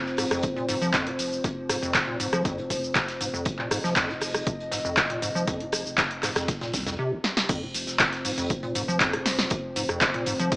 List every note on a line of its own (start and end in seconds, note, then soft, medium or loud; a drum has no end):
0.00 6.95 C4 medium
0.00 6.95 F4 medium
0.00 3.44 C5 medium
0.06 snare soft
0.17 0.39 F1 loud
0.17 0.25 G#2 medium
0.17 cross-stick medium
0.17 open hi-hat medium
0.17 shaker medium
0.31 0.45 F2 loud
0.31 cross-stick medium
0.31 closed hi-hat soft
0.31 shaker soft
0.43 0.48 F3 loud
0.43 kick loud
0.43 closed hi-hat medium
0.43 shaker soft
0.56 0.67 A#2 medium
0.56 closed hi-hat soft
0.69 0.90 F1 medium
0.69 0.76 G#2 loud
0.69 closed hi-hat medium
0.69 open hi-hat loud
0.69 shaker medium
0.81 0.92 F3 loud
0.81 shaker soft
0.94 1.08 F2 loud
0.94 kick loud
0.94 snare loud
0.94 clap loud
0.94 closed hi-hat medium
0.94 shaker soft
1.07 1.11 C3 medium
1.07 closed hi-hat soft
1.19 1.40 F1 medium
1.19 closed hi-hat medium
1.19 open hi-hat loud
1.19 shaker medium
1.33 shaker soft
1.44 1.49 C3 medium
1.44 kick loud
1.44 closed hi-hat medium
1.44 shaker soft
1.69 1.80 F1 loud
1.69 1.77 G#2 medium
1.69 cross-stick medium
1.69 closed hi-hat medium
1.69 open hi-hat loud
1.69 shaker medium
1.82 2.03 F1 medium
1.82 1.96 F2 loud
1.82 shaker soft
1.94 1.99 F3 loud
1.94 kick loud
1.94 snare loud
1.94 clap loud
1.94 closed hi-hat medium
1.94 shaker soft
2.08 2.18 A#2 medium
2.20 2.41 F1 loud
2.20 2.27 G#2 loud
2.20 closed hi-hat medium
2.20 open hi-hat medium
2.20 shaker medium
2.33 2.43 F3 loud
2.33 cross-stick medium
2.33 closed hi-hat medium
2.33 shaker soft
2.45 2.60 F2 loud
2.45 kick loud
2.45 closed hi-hat medium
2.45 shaker soft
2.58 2.62 C3 medium
2.58 closed hi-hat soft
2.70 2.91 F1 medium
2.70 kick medium
2.70 closed hi-hat medium
2.70 open hi-hat loud
2.70 shaker medium
2.84 shaker soft
2.95 3.00 C3 medium
2.95 kick loud
2.95 snare loud
2.95 clap loud
2.95 closed hi-hat medium
2.95 shaker soft
3.08 snare medium
3.08 closed hi-hat medium
3.21 3.42 F1 medium
3.21 3.28 G#2 medium
3.21 closed hi-hat medium
3.21 open hi-hat medium
3.21 shaker medium
3.34 3.47 F2 loud
3.34 shaker soft
3.45 3.50 F3 loud
3.45 6.98 D#5 medium
3.45 kick loud
3.45 closed hi-hat medium
3.45 shaker soft
3.59 3.69 A#2 medium
3.59 clap soft
3.71 3.82 F1 loud
3.71 3.78 G#2 loud
3.71 cross-stick medium
3.71 closed hi-hat medium
3.71 open hi-hat loud
3.71 shaker medium
3.84 4.05 F1 medium
3.84 3.94 F3 loud
3.84 snare soft
3.84 shaker soft
3.96 4.11 F2 loud
3.96 kick loud
3.96 snare loud
3.96 clap loud
3.96 closed hi-hat medium
3.96 shaker soft
4.09 4.13 C3 medium
4.09 snare soft
4.21 4.43 F1 loud
4.21 cross-stick medium
4.21 open hi-hat medium
4.21 shaker medium
4.34 cross-stick medium
4.34 closed hi-hat medium
4.34 shaker soft
4.47 4.51 C3 medium
4.47 kick loud
4.47 closed hi-hat medium
4.47 shaker soft
4.60 closed hi-hat soft
4.72 4.93 F1 medium
4.72 4.79 G#2 medium
4.72 snare loud
4.72 closed hi-hat medium
4.72 open hi-hat loud
4.72 shaker medium
4.85 4.99 F2 loud
4.85 shaker soft
4.97 5.01 F3 loud
4.97 kick loud
4.97 snare loud
4.97 clap loud
4.97 closed hi-hat medium
4.97 shaker soft
5.10 5.20 A#2 medium
5.10 closed hi-hat medium
5.22 5.43 F1 medium
5.22 5.29 G#2 loud
5.22 closed hi-hat medium
5.22 open hi-hat medium
5.22 shaker medium
5.35 5.45 F3 loud
5.35 shaker soft
5.47 5.62 F2 loud
5.47 kick loud
5.47 closed hi-hat medium
5.47 shaker soft
5.60 5.65 C3 medium
5.60 closed hi-hat soft
5.72 5.84 F1 loud
5.72 cross-stick medium
5.72 closed hi-hat medium
5.72 open hi-hat loud
5.72 shaker medium
5.86 6.07 F1 medium
5.86 shaker soft
5.98 6.02 C3 medium
5.98 kick loud
5.98 snare loud
5.98 clap loud
5.98 closed hi-hat medium
5.98 shaker soft
6.11 closed hi-hat soft
6.23 6.44 F1 loud
6.23 6.30 G#2 medium
6.23 cross-stick medium
6.23 snare loud
6.23 clap soft
6.23 closed hi-hat medium
6.23 open hi-hat medium
6.23 shaker medium
6.36 6.50 F2 loud
6.36 cross-stick medium
6.36 snare medium
6.36 closed hi-hat medium
6.36 shaker soft
6.48 6.53 F3 loud
6.48 kick loud
6.48 snare loud
6.48 closed hi-hat medium
6.48 shaker soft
6.61 6.75 A#2 medium
6.61 snare loud
6.61 closed hi-hat medium
6.74 6.81 F1 medium
6.74 6.95 C2 medium
6.74 kick medium
6.74 snare loud
6.74 closed hi-hat medium
6.74 open hi-hat loud
6.74 shaker medium
6.86 6.97 F2 loud
6.86 snare loud
6.86 closed hi-hat medium
6.86 closed hi-hat soft
6.86 shaker soft
6.99 7.13 C3 loud
7.12 7.19 F1 loud
7.24 snare medium
7.37 snare medium
7.49 7.64 F2 loud
7.49 10.56 C4 medium
7.49 10.56 F4 medium
7.49 10.56 C5 medium
7.49 kick loud
7.49 closed hi-hat medium
7.49 crash loud
7.49 shaker soft
7.62 7.66 C3 medium
7.74 7.85 F1 loud
7.74 closed hi-hat medium
7.74 open hi-hat loud
7.74 shaker medium
7.87 8.08 F1 medium
7.87 snare soft
7.87 closed hi-hat soft
7.87 shaker soft
7.99 8.04 C3 medium
7.99 kick loud
7.99 snare loud
7.99 clap loud
7.99 closed hi-hat medium
7.99 closed hi-hat loud
7.99 shaker soft
8.13 snare soft
8.13 closed hi-hat soft
8.25 8.46 F1 loud
8.25 8.32 G#2 medium
8.25 open hi-hat medium
8.25 shaker medium
8.38 8.52 F2 loud
8.38 closed hi-hat medium
8.38 shaker soft
8.50 8.54 F3 loud
8.50 kick loud
8.50 closed hi-hat medium
8.50 closed hi-hat loud
8.50 shaker soft
8.63 8.73 A#2 medium
8.63 closed hi-hat soft
8.75 8.96 F1 medium
8.75 8.82 G#2 loud
8.75 closed hi-hat medium
8.75 open hi-hat loud
8.75 shaker medium
8.88 8.98 F3 loud
8.88 shaker soft
9.00 9.15 F2 loud
9.00 kick loud
9.00 snare loud
9.00 clap loud
9.00 closed hi-hat medium
9.00 shaker soft
9.02 closed hi-hat loud
9.13 9.17 C3 medium
9.13 cross-stick medium
9.13 closed hi-hat medium
9.26 9.47 F1 medium
9.26 snare medium
9.26 closed hi-hat medium
9.26 open hi-hat medium
9.26 shaker medium
9.39 snare medium
9.39 shaker soft
9.50 9.55 C3 medium
9.50 kick loud
9.50 closed hi-hat loud
9.50 closed hi-hat medium
9.50 shaker soft
9.76 9.87 F1 loud
9.76 9.83 G#2 medium
9.76 closed hi-hat medium
9.76 open hi-hat loud
9.76 shaker medium
9.89 10.10 F1 medium
9.89 10.03 F2 loud
9.89 cross-stick medium
9.89 closed hi-hat soft
9.89 shaker soft
10.00 10.06 F3 loud
10.00 kick loud
10.00 snare loud
10.00 clap loud
10.00 closed hi-hat medium
10.00 shaker soft
10.14 10.24 A#2 medium
10.14 closed hi-hat soft
10.26 10.48 F1 loud
10.26 10.34 G#2 loud
10.26 closed hi-hat medium
10.26 open hi-hat medium
10.26 shaker medium
10.39 10.50 F3 loud
10.39 closed hi-hat medium
10.39 shaker soft
10.52 10.56 F2 loud
10.52 kick loud
10.52 closed hi-hat medium
10.52 shaker soft